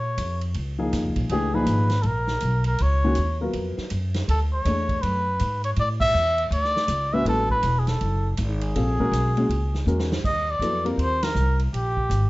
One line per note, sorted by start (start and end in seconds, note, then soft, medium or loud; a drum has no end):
0.00 0.17 A#2 medium
0.00 0.43 C#5 medium
0.17 0.54 F2 medium
0.17 hi-hat pedal medium
0.17 ride medium
0.41 ride soft
0.54 0.92 C#2 medium
0.54 ride medium
0.79 1.27 F3 medium
0.79 1.27 A#3 medium
0.79 1.27 D#4 medium
0.79 1.27 G#4 medium
0.92 1.07 F2 medium
0.92 snare soft
0.92 hi-hat pedal medium
0.92 ride medium
1.05 1.18 C#2 medium
1.16 1.29 A#1 medium
1.16 kick medium
1.16 ride medium
1.29 1.66 C#2 medium
1.29 1.52 E3 medium
1.29 1.52 A3 medium
1.29 1.52 D4 medium
1.29 1.52 G4 medium
1.29 1.56 G#4 medium
1.29 ride medium
1.54 1.87 A#2 medium
1.54 1.86 F3 medium
1.54 1.87 D#4 medium
1.54 1.87 G#4 medium
1.54 2.04 B4 medium
1.66 2.03 G#1 loud
1.66 hi-hat pedal medium
1.66 ride medium
1.90 snare soft
1.90 ride soft
2.02 2.40 A#1 medium
2.02 2.08 A4 medium
2.02 ride medium
2.07 2.66 A#4 medium
2.27 snare soft
2.40 2.78 B1 medium
2.40 hi-hat pedal medium
2.40 ride medium
2.64 2.84 A#4 medium
2.64 ride medium
2.78 3.16 C#2 medium
2.78 3.41 C#5 loud
2.78 ride medium
3.04 3.16 D#3 medium
3.04 3.16 G#3 medium
3.04 3.16 C#4 medium
3.04 3.16 F#4 medium
3.15 3.53 D#2 medium
3.15 hi-hat pedal medium
3.15 ride medium
3.41 3.88 F#3 medium
3.41 3.89 B3 medium
3.41 3.89 F4 medium
3.41 3.89 A#4 medium
3.53 3.76 F2 medium
3.53 ride medium
3.78 muted upright bass stroke soft
3.78 snare soft
3.90 4.27 F#2 medium
3.90 hi-hat pedal medium
3.90 ride medium
4.14 snare medium
4.14 ride medium
4.28 4.64 D2 medium
4.28 4.40 A4 medium
4.28 ride medium
4.53 5.04 C#5 medium
4.65 5.01 E2 medium
4.65 5.22 A3 soft
4.65 5.22 D4 soft
4.65 5.22 G#4 soft
4.65 5.22 C#5 medium
4.65 hi-hat pedal soft
4.65 ride medium
4.89 kick medium
4.89 ride soft
5.02 5.39 F#2 medium
5.02 5.63 B4 loud
5.02 ride medium
5.39 5.76 G#2 medium
5.39 hi-hat pedal medium
5.39 ride medium
5.64 5.70 C#5 medium
5.64 ride soft
5.76 6.13 A2 medium
5.76 5.89 D5 loud
5.76 ride medium
6.01 6.48 E5 loud
6.01 kick medium
6.01 crash medium
6.14 6.50 E2 medium
6.14 hi-hat pedal medium
6.38 ride soft
6.50 6.87 D2 medium
6.50 7.15 D5 loud
6.50 ride medium
6.64 snare soft
6.76 snare medium
6.88 7.24 C#2 medium
6.88 hi-hat pedal medium
6.88 ride medium
7.13 7.61 G#3 medium
7.13 7.61 C#4 medium
7.13 7.61 F#4 medium
7.13 7.61 B4 medium
7.13 7.26 E5 loud
7.25 7.61 A1 medium
7.25 7.48 F#3 medium
7.25 7.48 B3 soft
7.25 7.48 E4 medium
7.25 7.48 A4 medium
7.25 7.49 A4 loud
7.25 ride medium
7.50 7.80 B4 loud
7.50 kick soft
7.63 7.99 E1 medium
7.63 hi-hat pedal medium
7.63 ride medium
7.79 7.89 G#4 medium
7.87 8.32 A4 loud
7.87 snare soft
7.87 ride soft
8.01 8.37 F#1 medium
8.01 ride medium
8.37 8.74 G#1 medium
8.37 hi-hat pedal medium
8.37 ride medium
8.61 9.83 G#4 medium
8.61 ride medium
8.75 9.11 A#1 medium
8.75 8.97 G3 medium
8.75 8.97 C4 medium
8.75 8.97 F4 medium
8.75 8.97 A4 medium
8.75 ride medium
8.99 9.32 G#3 medium
8.99 9.32 C#4 medium
8.99 9.32 F#4 medium
8.99 9.32 A#4 medium
8.99 kick medium
9.12 9.48 B1 medium
9.12 hi-hat pedal medium
9.12 ride medium
9.37 9.49 G#3 medium
9.37 9.49 C#4 medium
9.37 9.49 F#4 medium
9.37 9.49 G#4 medium
9.37 ride soft
9.49 9.85 C#2 medium
9.49 ride medium
9.74 snare soft
9.86 10.22 E2 medium
9.86 10.08 G#3 medium
9.86 10.08 C#4 medium
9.86 10.08 F#4 medium
9.86 10.09 A#4 medium
9.86 hi-hat pedal medium
9.99 snare medium
10.12 snare medium
10.24 10.59 D#2 medium
10.24 10.52 D#5 loud
10.24 kick medium
10.24 crash medium
10.51 10.87 D5 loud
10.59 10.97 F2 medium
10.59 10.83 F#3 medium
10.59 10.83 B3 medium
10.59 10.83 E4 medium
10.59 10.83 A4 medium
10.59 hi-hat pedal medium
10.59 ride medium
10.85 11.18 G3 medium
10.85 11.18 C4 soft
10.85 11.18 F4 medium
10.85 11.18 A#4 medium
10.85 ride soft
10.97 11.34 D#2 medium
10.97 ride medium
11.02 11.25 C5 loud
11.23 11.60 A#4 medium
11.23 snare medium
11.23 ride medium
11.35 11.72 C2 medium
11.35 hi-hat pedal medium
11.59 ride soft
11.73 12.09 A#1 medium
11.73 12.30 G4 medium
11.73 ride medium
11.97 kick soft
12.10 12.30 G#1 medium
12.10 hi-hat pedal medium
12.10 ride medium